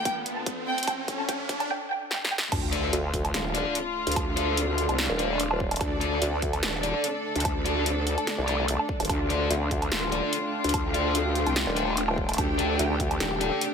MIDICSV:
0, 0, Header, 1, 10, 480
1, 0, Start_track
1, 0, Tempo, 410959
1, 1023, Time_signature, 4, 2, 24, 8
1, 16047, End_track
2, 0, Start_track
2, 0, Title_t, "Violin section"
2, 0, Program_c, 0, 48
2, 61, Note_on_c, 0, 79, 92
2, 353, Note_off_c, 0, 79, 0
2, 431, Note_on_c, 0, 81, 87
2, 715, Note_off_c, 0, 81, 0
2, 782, Note_on_c, 0, 79, 88
2, 1005, Note_off_c, 0, 79, 0
2, 1020, Note_on_c, 0, 79, 101
2, 1313, Note_off_c, 0, 79, 0
2, 1391, Note_on_c, 0, 81, 94
2, 1485, Note_off_c, 0, 81, 0
2, 1501, Note_on_c, 0, 79, 100
2, 1793, Note_off_c, 0, 79, 0
2, 1871, Note_on_c, 0, 81, 90
2, 1965, Note_off_c, 0, 81, 0
2, 1982, Note_on_c, 0, 79, 102
2, 2205, Note_off_c, 0, 79, 0
2, 2223, Note_on_c, 0, 79, 107
2, 2445, Note_off_c, 0, 79, 0
2, 2463, Note_on_c, 0, 79, 96
2, 2685, Note_off_c, 0, 79, 0
2, 2705, Note_on_c, 0, 79, 104
2, 2926, Note_off_c, 0, 79, 0
2, 16047, End_track
3, 0, Start_track
3, 0, Title_t, "Ambient pad"
3, 0, Program_c, 1, 92
3, 0, Note_on_c, 1, 62, 78
3, 0, Note_on_c, 1, 69, 83
3, 0, Note_on_c, 1, 74, 76
3, 1983, Note_off_c, 1, 62, 0
3, 1983, Note_off_c, 1, 69, 0
3, 1983, Note_off_c, 1, 74, 0
3, 2942, Note_on_c, 1, 62, 89
3, 3285, Note_on_c, 1, 74, 96
3, 3863, Note_on_c, 1, 69, 83
3, 10965, Note_on_c, 1, 79, 94
3, 10991, Note_off_c, 1, 74, 0
3, 16047, Note_off_c, 1, 62, 0
3, 16047, Note_off_c, 1, 69, 0
3, 16047, Note_off_c, 1, 79, 0
3, 16047, End_track
4, 0, Start_track
4, 0, Title_t, "Distorted electric guitar"
4, 0, Program_c, 2, 30
4, 3179, Note_on_c, 2, 74, 88
4, 3184, Note_on_c, 2, 69, 73
4, 3189, Note_on_c, 2, 62, 74
4, 3405, Note_off_c, 2, 62, 0
4, 3405, Note_off_c, 2, 69, 0
4, 3405, Note_off_c, 2, 74, 0
4, 4138, Note_on_c, 2, 74, 90
4, 4146, Note_on_c, 2, 69, 73
4, 4150, Note_on_c, 2, 62, 76
4, 4365, Note_off_c, 2, 62, 0
4, 4365, Note_off_c, 2, 69, 0
4, 4365, Note_off_c, 2, 74, 0
4, 5098, Note_on_c, 2, 74, 96
4, 5104, Note_on_c, 2, 69, 69
4, 5110, Note_on_c, 2, 62, 77
4, 5325, Note_off_c, 2, 62, 0
4, 5325, Note_off_c, 2, 69, 0
4, 5325, Note_off_c, 2, 74, 0
4, 6059, Note_on_c, 2, 74, 106
4, 6064, Note_on_c, 2, 69, 70
4, 6070, Note_on_c, 2, 62, 76
4, 6285, Note_off_c, 2, 62, 0
4, 6285, Note_off_c, 2, 69, 0
4, 6285, Note_off_c, 2, 74, 0
4, 7020, Note_on_c, 2, 74, 94
4, 7025, Note_on_c, 2, 69, 76
4, 7028, Note_on_c, 2, 62, 73
4, 7245, Note_off_c, 2, 62, 0
4, 7245, Note_off_c, 2, 69, 0
4, 7245, Note_off_c, 2, 74, 0
4, 7980, Note_on_c, 2, 74, 87
4, 7986, Note_on_c, 2, 69, 74
4, 7990, Note_on_c, 2, 62, 76
4, 8205, Note_off_c, 2, 62, 0
4, 8205, Note_off_c, 2, 69, 0
4, 8205, Note_off_c, 2, 74, 0
4, 8939, Note_on_c, 2, 74, 94
4, 8944, Note_on_c, 2, 69, 75
4, 8950, Note_on_c, 2, 62, 75
4, 9165, Note_off_c, 2, 62, 0
4, 9165, Note_off_c, 2, 69, 0
4, 9165, Note_off_c, 2, 74, 0
4, 9899, Note_on_c, 2, 74, 103
4, 9904, Note_on_c, 2, 69, 90
4, 9909, Note_on_c, 2, 62, 82
4, 10049, Note_off_c, 2, 62, 0
4, 10049, Note_off_c, 2, 69, 0
4, 10049, Note_off_c, 2, 74, 0
4, 10859, Note_on_c, 2, 74, 92
4, 10865, Note_on_c, 2, 69, 74
4, 10871, Note_on_c, 2, 62, 75
4, 11085, Note_off_c, 2, 62, 0
4, 11085, Note_off_c, 2, 69, 0
4, 11085, Note_off_c, 2, 74, 0
4, 11818, Note_on_c, 2, 74, 96
4, 11824, Note_on_c, 2, 69, 72
4, 11830, Note_on_c, 2, 62, 77
4, 12045, Note_off_c, 2, 62, 0
4, 12045, Note_off_c, 2, 69, 0
4, 12045, Note_off_c, 2, 74, 0
4, 12779, Note_on_c, 2, 74, 98
4, 12784, Note_on_c, 2, 69, 70
4, 12790, Note_on_c, 2, 62, 72
4, 13005, Note_off_c, 2, 62, 0
4, 13005, Note_off_c, 2, 69, 0
4, 13005, Note_off_c, 2, 74, 0
4, 13739, Note_on_c, 2, 74, 92
4, 13744, Note_on_c, 2, 69, 77
4, 13751, Note_on_c, 2, 62, 74
4, 13965, Note_off_c, 2, 62, 0
4, 13965, Note_off_c, 2, 69, 0
4, 13965, Note_off_c, 2, 74, 0
4, 14699, Note_on_c, 2, 74, 94
4, 14706, Note_on_c, 2, 69, 74
4, 14711, Note_on_c, 2, 62, 80
4, 14925, Note_off_c, 2, 62, 0
4, 14925, Note_off_c, 2, 69, 0
4, 14925, Note_off_c, 2, 74, 0
4, 15659, Note_on_c, 2, 74, 101
4, 15665, Note_on_c, 2, 69, 73
4, 15669, Note_on_c, 2, 62, 82
4, 15885, Note_off_c, 2, 62, 0
4, 15885, Note_off_c, 2, 69, 0
4, 15885, Note_off_c, 2, 74, 0
4, 16047, End_track
5, 0, Start_track
5, 0, Title_t, "String section"
5, 0, Program_c, 3, 48
5, 0, Note_on_c, 3, 38, 76
5, 0, Note_on_c, 3, 50, 68
5, 0, Note_on_c, 3, 57, 68
5, 0, Note_on_c, 3, 65, 68
5, 0, Note_on_c, 3, 69, 83
5, 1935, Note_off_c, 3, 38, 0
5, 1935, Note_off_c, 3, 69, 0
5, 1936, Note_off_c, 3, 50, 0
5, 1936, Note_off_c, 3, 57, 0
5, 1936, Note_off_c, 3, 65, 0
5, 2942, Note_on_c, 3, 62, 74
5, 2942, Note_on_c, 3, 65, 91
5, 2943, Note_on_c, 3, 57, 81
5, 6769, Note_off_c, 3, 65, 0
5, 6781, Note_on_c, 3, 69, 88
5, 10609, Note_off_c, 3, 69, 0
5, 10622, Note_on_c, 3, 65, 93
5, 14450, Note_off_c, 3, 65, 0
5, 14463, Note_on_c, 3, 67, 89
5, 16047, Note_off_c, 3, 57, 0
5, 16047, Note_off_c, 3, 62, 0
5, 16047, Note_off_c, 3, 67, 0
5, 16047, End_track
6, 0, Start_track
6, 0, Title_t, "Wobble bass"
6, 0, Program_c, 4, 39
6, 3423, Note_on_c, 4, 38, 98
6, 3885, Note_off_c, 4, 38, 0
6, 5952, Note_on_c, 4, 27, 95
6, 6765, Note_off_c, 4, 27, 0
6, 7263, Note_on_c, 4, 38, 98
6, 7725, Note_off_c, 4, 38, 0
6, 9792, Note_on_c, 4, 36, 96
6, 10251, Note_off_c, 4, 36, 0
6, 11103, Note_on_c, 4, 38, 96
6, 11565, Note_off_c, 4, 38, 0
6, 13632, Note_on_c, 4, 27, 97
6, 14445, Note_off_c, 4, 27, 0
6, 14942, Note_on_c, 4, 38, 98
6, 15405, Note_off_c, 4, 38, 0
6, 16047, End_track
7, 0, Start_track
7, 0, Title_t, "Wobble bass"
7, 0, Program_c, 5, 39
7, 2943, Note_on_c, 5, 38, 97
7, 3405, Note_off_c, 5, 38, 0
7, 3902, Note_on_c, 5, 27, 99
7, 4251, Note_off_c, 5, 27, 0
7, 4752, Note_on_c, 5, 38, 97
7, 5691, Note_off_c, 5, 38, 0
7, 5712, Note_on_c, 5, 36, 96
7, 5931, Note_off_c, 5, 36, 0
7, 6783, Note_on_c, 5, 38, 100
7, 7245, Note_off_c, 5, 38, 0
7, 7742, Note_on_c, 5, 27, 98
7, 8091, Note_off_c, 5, 27, 0
7, 8592, Note_on_c, 5, 38, 97
7, 9531, Note_off_c, 5, 38, 0
7, 10512, Note_on_c, 5, 27, 98
7, 10605, Note_off_c, 5, 27, 0
7, 10623, Note_on_c, 5, 38, 96
7, 11085, Note_off_c, 5, 38, 0
7, 11582, Note_on_c, 5, 27, 95
7, 11931, Note_off_c, 5, 27, 0
7, 12432, Note_on_c, 5, 38, 95
7, 13371, Note_off_c, 5, 38, 0
7, 13392, Note_on_c, 5, 36, 98
7, 13612, Note_off_c, 5, 36, 0
7, 14463, Note_on_c, 5, 38, 94
7, 14925, Note_off_c, 5, 38, 0
7, 15423, Note_on_c, 5, 27, 99
7, 15771, Note_off_c, 5, 27, 0
7, 16047, End_track
8, 0, Start_track
8, 0, Title_t, "Riser"
8, 0, Program_c, 6, 103
8, 0, Note_on_c, 6, 60, 77
8, 1982, Note_off_c, 6, 60, 0
8, 16047, End_track
9, 0, Start_track
9, 0, Title_t, "Sub drop"
9, 0, Program_c, 7, 103
9, 2943, Note_on_c, 7, 60, 79
9, 4863, Note_off_c, 7, 60, 0
9, 16047, End_track
10, 0, Start_track
10, 0, Title_t, "Drums"
10, 63, Note_on_c, 9, 36, 105
10, 63, Note_on_c, 9, 42, 80
10, 180, Note_off_c, 9, 36, 0
10, 180, Note_off_c, 9, 42, 0
10, 303, Note_on_c, 9, 42, 55
10, 420, Note_off_c, 9, 42, 0
10, 542, Note_on_c, 9, 42, 81
10, 543, Note_on_c, 9, 36, 105
10, 659, Note_off_c, 9, 36, 0
10, 659, Note_off_c, 9, 42, 0
10, 911, Note_on_c, 9, 42, 49
10, 967, Note_off_c, 9, 42, 0
10, 967, Note_on_c, 9, 42, 67
10, 1022, Note_off_c, 9, 42, 0
10, 1022, Note_on_c, 9, 42, 76
10, 1022, Note_on_c, 9, 77, 75
10, 1023, Note_on_c, 9, 36, 103
10, 1139, Note_off_c, 9, 36, 0
10, 1139, Note_off_c, 9, 42, 0
10, 1139, Note_off_c, 9, 77, 0
10, 1263, Note_on_c, 9, 36, 106
10, 1263, Note_on_c, 9, 42, 51
10, 1379, Note_off_c, 9, 36, 0
10, 1380, Note_off_c, 9, 42, 0
10, 1502, Note_on_c, 9, 42, 80
10, 1503, Note_on_c, 9, 36, 104
10, 1619, Note_off_c, 9, 36, 0
10, 1619, Note_off_c, 9, 42, 0
10, 1743, Note_on_c, 9, 36, 104
10, 1743, Note_on_c, 9, 42, 50
10, 1859, Note_off_c, 9, 36, 0
10, 1860, Note_off_c, 9, 42, 0
10, 1871, Note_on_c, 9, 42, 37
10, 1871, Note_on_c, 9, 77, 52
10, 1988, Note_off_c, 9, 42, 0
10, 1988, Note_off_c, 9, 77, 0
10, 2463, Note_on_c, 9, 38, 69
10, 2580, Note_off_c, 9, 38, 0
10, 2623, Note_on_c, 9, 38, 84
10, 2739, Note_off_c, 9, 38, 0
10, 2783, Note_on_c, 9, 38, 100
10, 2900, Note_off_c, 9, 38, 0
10, 2943, Note_on_c, 9, 36, 121
10, 2943, Note_on_c, 9, 42, 80
10, 2943, Note_on_c, 9, 49, 105
10, 2943, Note_on_c, 9, 77, 81
10, 3060, Note_off_c, 9, 36, 0
10, 3060, Note_off_c, 9, 42, 0
10, 3060, Note_off_c, 9, 49, 0
10, 3060, Note_off_c, 9, 77, 0
10, 3183, Note_on_c, 9, 42, 57
10, 3300, Note_off_c, 9, 42, 0
10, 3423, Note_on_c, 9, 42, 84
10, 3540, Note_off_c, 9, 42, 0
10, 3663, Note_on_c, 9, 36, 62
10, 3663, Note_on_c, 9, 42, 54
10, 3780, Note_off_c, 9, 36, 0
10, 3780, Note_off_c, 9, 42, 0
10, 3792, Note_on_c, 9, 42, 39
10, 3792, Note_on_c, 9, 77, 56
10, 3903, Note_off_c, 9, 42, 0
10, 3903, Note_on_c, 9, 38, 122
10, 3903, Note_on_c, 9, 42, 84
10, 3909, Note_off_c, 9, 77, 0
10, 4020, Note_off_c, 9, 38, 0
10, 4020, Note_off_c, 9, 42, 0
10, 4142, Note_on_c, 9, 42, 56
10, 4259, Note_off_c, 9, 42, 0
10, 4382, Note_on_c, 9, 42, 84
10, 4499, Note_off_c, 9, 42, 0
10, 4752, Note_on_c, 9, 42, 52
10, 4807, Note_off_c, 9, 42, 0
10, 4807, Note_on_c, 9, 42, 67
10, 4863, Note_off_c, 9, 42, 0
10, 4863, Note_on_c, 9, 36, 125
10, 4863, Note_on_c, 9, 42, 80
10, 4863, Note_on_c, 9, 77, 80
10, 4980, Note_off_c, 9, 36, 0
10, 4980, Note_off_c, 9, 42, 0
10, 4980, Note_off_c, 9, 77, 0
10, 5103, Note_on_c, 9, 42, 56
10, 5220, Note_off_c, 9, 42, 0
10, 5343, Note_on_c, 9, 42, 85
10, 5459, Note_off_c, 9, 42, 0
10, 5583, Note_on_c, 9, 42, 56
10, 5700, Note_off_c, 9, 42, 0
10, 5712, Note_on_c, 9, 42, 40
10, 5712, Note_on_c, 9, 77, 55
10, 5823, Note_off_c, 9, 42, 0
10, 5823, Note_on_c, 9, 38, 125
10, 5823, Note_on_c, 9, 42, 86
10, 5828, Note_off_c, 9, 77, 0
10, 5940, Note_off_c, 9, 38, 0
10, 5940, Note_off_c, 9, 42, 0
10, 6063, Note_on_c, 9, 42, 56
10, 6180, Note_off_c, 9, 42, 0
10, 6303, Note_on_c, 9, 42, 83
10, 6419, Note_off_c, 9, 42, 0
10, 6432, Note_on_c, 9, 77, 81
10, 6543, Note_on_c, 9, 36, 66
10, 6549, Note_off_c, 9, 77, 0
10, 6660, Note_off_c, 9, 36, 0
10, 6672, Note_on_c, 9, 42, 51
10, 6672, Note_on_c, 9, 77, 53
10, 6727, Note_off_c, 9, 42, 0
10, 6727, Note_on_c, 9, 42, 68
10, 6782, Note_off_c, 9, 42, 0
10, 6782, Note_off_c, 9, 77, 0
10, 6782, Note_on_c, 9, 42, 80
10, 6782, Note_on_c, 9, 77, 75
10, 6783, Note_on_c, 9, 36, 126
10, 6899, Note_off_c, 9, 42, 0
10, 6899, Note_off_c, 9, 77, 0
10, 6900, Note_off_c, 9, 36, 0
10, 7022, Note_on_c, 9, 42, 54
10, 7139, Note_off_c, 9, 42, 0
10, 7262, Note_on_c, 9, 42, 83
10, 7379, Note_off_c, 9, 42, 0
10, 7502, Note_on_c, 9, 42, 52
10, 7503, Note_on_c, 9, 36, 65
10, 7619, Note_off_c, 9, 42, 0
10, 7620, Note_off_c, 9, 36, 0
10, 7631, Note_on_c, 9, 42, 39
10, 7631, Note_on_c, 9, 77, 53
10, 7742, Note_off_c, 9, 42, 0
10, 7742, Note_on_c, 9, 38, 125
10, 7742, Note_on_c, 9, 42, 83
10, 7748, Note_off_c, 9, 77, 0
10, 7858, Note_off_c, 9, 38, 0
10, 7858, Note_off_c, 9, 42, 0
10, 7982, Note_on_c, 9, 42, 53
10, 8098, Note_off_c, 9, 42, 0
10, 8222, Note_on_c, 9, 42, 82
10, 8338, Note_off_c, 9, 42, 0
10, 8591, Note_on_c, 9, 42, 50
10, 8647, Note_off_c, 9, 42, 0
10, 8647, Note_on_c, 9, 42, 68
10, 8701, Note_off_c, 9, 42, 0
10, 8701, Note_on_c, 9, 42, 76
10, 8701, Note_on_c, 9, 77, 75
10, 8703, Note_on_c, 9, 36, 123
10, 8818, Note_off_c, 9, 42, 0
10, 8818, Note_off_c, 9, 77, 0
10, 8820, Note_off_c, 9, 36, 0
10, 8942, Note_on_c, 9, 42, 55
10, 9059, Note_off_c, 9, 42, 0
10, 9182, Note_on_c, 9, 42, 81
10, 9299, Note_off_c, 9, 42, 0
10, 9422, Note_on_c, 9, 42, 53
10, 9539, Note_off_c, 9, 42, 0
10, 9552, Note_on_c, 9, 42, 36
10, 9552, Note_on_c, 9, 77, 50
10, 9662, Note_off_c, 9, 42, 0
10, 9662, Note_on_c, 9, 38, 126
10, 9662, Note_on_c, 9, 42, 79
10, 9668, Note_off_c, 9, 77, 0
10, 9779, Note_off_c, 9, 38, 0
10, 9779, Note_off_c, 9, 42, 0
10, 9902, Note_on_c, 9, 42, 52
10, 10019, Note_off_c, 9, 42, 0
10, 10143, Note_on_c, 9, 42, 81
10, 10259, Note_off_c, 9, 42, 0
10, 10272, Note_on_c, 9, 77, 74
10, 10383, Note_on_c, 9, 36, 65
10, 10388, Note_off_c, 9, 77, 0
10, 10500, Note_off_c, 9, 36, 0
10, 10512, Note_on_c, 9, 42, 49
10, 10512, Note_on_c, 9, 77, 50
10, 10567, Note_off_c, 9, 42, 0
10, 10567, Note_on_c, 9, 42, 62
10, 10623, Note_off_c, 9, 42, 0
10, 10623, Note_off_c, 9, 77, 0
10, 10623, Note_on_c, 9, 36, 120
10, 10623, Note_on_c, 9, 42, 75
10, 10623, Note_on_c, 9, 77, 75
10, 10740, Note_off_c, 9, 36, 0
10, 10740, Note_off_c, 9, 42, 0
10, 10740, Note_off_c, 9, 77, 0
10, 10863, Note_on_c, 9, 42, 50
10, 10980, Note_off_c, 9, 42, 0
10, 11102, Note_on_c, 9, 42, 78
10, 11219, Note_off_c, 9, 42, 0
10, 11343, Note_on_c, 9, 36, 63
10, 11343, Note_on_c, 9, 42, 50
10, 11459, Note_off_c, 9, 42, 0
10, 11460, Note_off_c, 9, 36, 0
10, 11472, Note_on_c, 9, 42, 36
10, 11472, Note_on_c, 9, 77, 50
10, 11582, Note_off_c, 9, 42, 0
10, 11582, Note_on_c, 9, 38, 120
10, 11582, Note_on_c, 9, 42, 77
10, 11589, Note_off_c, 9, 77, 0
10, 11699, Note_off_c, 9, 38, 0
10, 11699, Note_off_c, 9, 42, 0
10, 11822, Note_on_c, 9, 42, 51
10, 11939, Note_off_c, 9, 42, 0
10, 12062, Note_on_c, 9, 42, 76
10, 12179, Note_off_c, 9, 42, 0
10, 12432, Note_on_c, 9, 42, 47
10, 12487, Note_off_c, 9, 42, 0
10, 12487, Note_on_c, 9, 42, 62
10, 12542, Note_off_c, 9, 42, 0
10, 12542, Note_on_c, 9, 42, 73
10, 12542, Note_on_c, 9, 77, 76
10, 12543, Note_on_c, 9, 36, 115
10, 12659, Note_off_c, 9, 42, 0
10, 12659, Note_off_c, 9, 77, 0
10, 12660, Note_off_c, 9, 36, 0
10, 12782, Note_on_c, 9, 42, 51
10, 12899, Note_off_c, 9, 42, 0
10, 13022, Note_on_c, 9, 42, 80
10, 13138, Note_off_c, 9, 42, 0
10, 13262, Note_on_c, 9, 42, 50
10, 13379, Note_off_c, 9, 42, 0
10, 13391, Note_on_c, 9, 42, 36
10, 13391, Note_on_c, 9, 77, 54
10, 13502, Note_off_c, 9, 42, 0
10, 13502, Note_on_c, 9, 38, 121
10, 13502, Note_on_c, 9, 42, 76
10, 13508, Note_off_c, 9, 77, 0
10, 13619, Note_off_c, 9, 38, 0
10, 13619, Note_off_c, 9, 42, 0
10, 13742, Note_on_c, 9, 42, 50
10, 13859, Note_off_c, 9, 42, 0
10, 13982, Note_on_c, 9, 42, 74
10, 14099, Note_off_c, 9, 42, 0
10, 14111, Note_on_c, 9, 77, 79
10, 14223, Note_on_c, 9, 36, 59
10, 14228, Note_off_c, 9, 77, 0
10, 14340, Note_off_c, 9, 36, 0
10, 14352, Note_on_c, 9, 42, 48
10, 14352, Note_on_c, 9, 77, 52
10, 14407, Note_off_c, 9, 42, 0
10, 14407, Note_on_c, 9, 42, 64
10, 14462, Note_off_c, 9, 42, 0
10, 14462, Note_off_c, 9, 77, 0
10, 14462, Note_on_c, 9, 42, 75
10, 14462, Note_on_c, 9, 77, 80
10, 14463, Note_on_c, 9, 36, 117
10, 14579, Note_off_c, 9, 42, 0
10, 14579, Note_off_c, 9, 77, 0
10, 14580, Note_off_c, 9, 36, 0
10, 14703, Note_on_c, 9, 42, 54
10, 14820, Note_off_c, 9, 42, 0
10, 14943, Note_on_c, 9, 42, 80
10, 15059, Note_off_c, 9, 42, 0
10, 15183, Note_on_c, 9, 36, 60
10, 15183, Note_on_c, 9, 42, 51
10, 15300, Note_off_c, 9, 36, 0
10, 15300, Note_off_c, 9, 42, 0
10, 15311, Note_on_c, 9, 42, 37
10, 15311, Note_on_c, 9, 77, 54
10, 15422, Note_off_c, 9, 42, 0
10, 15422, Note_on_c, 9, 38, 116
10, 15422, Note_on_c, 9, 42, 82
10, 15428, Note_off_c, 9, 77, 0
10, 15539, Note_off_c, 9, 38, 0
10, 15539, Note_off_c, 9, 42, 0
10, 15662, Note_on_c, 9, 42, 51
10, 15779, Note_off_c, 9, 42, 0
10, 15901, Note_on_c, 9, 42, 80
10, 16018, Note_off_c, 9, 42, 0
10, 16047, End_track
0, 0, End_of_file